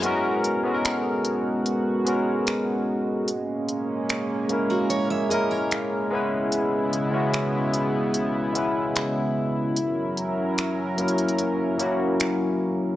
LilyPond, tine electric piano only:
\new Staff \with { instrumentName = "Tine electric piano" } { \time 4/4 \key gis \minor \tempo 4 = 74 << { <e' cis''>16 r2. r8. | r1 | r1 | r1 | } \\ { <gis b cis' fis' ais'>8 r16 <gis b cis' fis' a' ais'>4~ <gis b cis' fis' a' ais'>16 r8 <gis b cis' fis' ais'>4~ <gis b cis' fis' ais'>16 r16 | r4. <gis ais cis' e' ais'>8. r16 <gis ais cis' e' ais'>4 <gis b cis' e' b'>8~ | <gis b cis' e' b'>8 r16 <gis b cis' e' fis'>4~ <gis b cis' e' fis'>16 r8 <gis b cis' e' b'>4~ <gis b cis' e' b'>16 r16 | r4. <fis ais cis' e' ais'>8. r16 <fis ais cis' e' fis'>4 r8 | } >> }